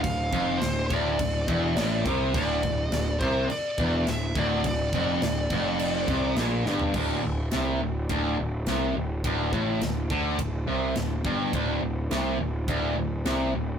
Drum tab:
CC |x-x-x-x-x-x-x-x-|x-x-x-x-x-x-x-x-|x-x-x-x-x-x-x---|x---------------|
RD |----------------|----------------|----------------|----b---b---b---|
SD |----o-------o---|----o-------o---|----o-------o-o-|----o-------o---|
FT |----------------|----------------|---------------o|----------------|
BD |o-o---o-o-o---o-|o-o---o---o---o-|o-o---o---o-----|o-------o-------|

CC |----------------|----------------|
RD |b---b---b---b---|b---b---b---b---|
SD |----o-------o---|----o-------o---|
FT |----------------|----------------|
BD |o-o---o-o-----o-|o-------o-------|